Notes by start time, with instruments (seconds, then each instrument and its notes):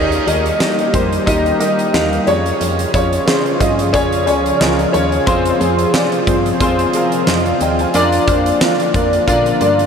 Already playing: fm bass D#2, grand piano D#3 D#4 G4 A#4 D#5, analog synth pad D#3 G3 A#3 G4
0.12 closed hi-hat
0.26 fm bass D#2, grand piano D#4 G4 A#4 D#5, closed hi-hat
0.46 closed hi-hat
0.60 grand piano D#4 G4 A#4 D#5, snare
0.79 closed hi-hat
0.93 fm bass F2, grand piano D#4 G4 A#4 C5, kick, closed hi-hat
1.13 closed hi-hat
1.26 fm bass D#2, grand piano D#4 G4 A#4 D#5, kick, closed hi-hat
1.46 closed hi-hat
1.59 grand piano D#4 G4 A#4 D#5, closed hi-hat
1.79 closed hi-hat
1.93 fm bass D#2, grand piano D#4 G4 A#4 F5, snare
2.13 closed hi-hat
2.27 fm bass F2, analog synth pad C#3 F3 F4 G#4, grand piano C#4 F4 G#4 C#5, closed hi-hat
2.46 closed hi-hat
2.61 fm bass F2, closed hi-hat
2.79 closed hi-hat
2.94 fm bass F2, grand piano C#4 F4 G#4 C#5, kick, closed hi-hat
3.13 closed hi-hat
3.26 grand piano C#4 F4 G#4 C5, snare
3.46 closed hi-hat
3.60 fm bass G2, grand piano C#4 F4 G#4 D#5, kick, closed hi-hat
3.79 closed hi-hat
3.93 fm bass F2, grand piano C#4 F4 G#4 C#5, kick, closed hi-hat
4.12 closed hi-hat
4.26 fm bass C#2, grand piano C#4 F4 G#4 C#5 G#5, closed hi-hat
4.45 grand piano F5, closed hi-hat
4.59 fm bass C#2, grand piano C#4 F4 G#4 A#4 D#5, snare
4.79 closed hi-hat
4.92 fm bass D#2, grand piano C#4 F4 G#4 C#5, closed hi-hat
5.12 closed hi-hat
5.26 fm bass F2, analog synth pad C3 G#4, grand piano C4 F4 G#4 C5, kick, closed hi-hat
5.45 closed hi-hat
5.59 fm bass F2, grand piano C4 F4 G#4 C5, closed hi-hat
5.79 closed hi-hat
5.93 grand piano C4 F4 G#4 D5, snare
6.12 closed hi-hat
6.27 fm bass G2, grand piano C4 F4 G#4 C5, kick, closed hi-hat
6.46 closed hi-hat
6.60 fm bass F2, grand piano C4 F4 G#4 C5, kick, closed hi-hat
6.79 closed hi-hat
6.93 grand piano C4 F4 G#4 A#4, closed hi-hat
7.12 closed hi-hat
7.27 fm bass F2, grand piano C5 D#5, snare
7.46 grand piano D5 F5, closed hi-hat
7.61 fm bass D#2, grand piano D#5 G5, closed hi-hat
7.79 grand piano F5 G#5, closed hi-hat
7.94 fm bass F2, analog synth pad D3 A#3, grand piano D4 F4 A#4 D5, closed hi-hat
8.12 closed hi-hat
8.27 fm bass F2, grand piano D4 F4 A#4 C5, kick, closed hi-hat
8.46 closed hi-hat
8.61 grand piano D4 F4 A#4 D5, snare
8.80 closed hi-hat
8.94 fm bass F2, grand piano D4 F4 A#4 D5, kick, closed hi-hat
9.13 closed hi-hat
9.27 fm bass A#2, grand piano D4 F4 A#4 D5, kick, closed hi-hat
9.46 closed hi-hat
9.60 fm bass G2, grand piano D4 F4 A#4 D5, closed hi-hat
9.79 closed hi-hat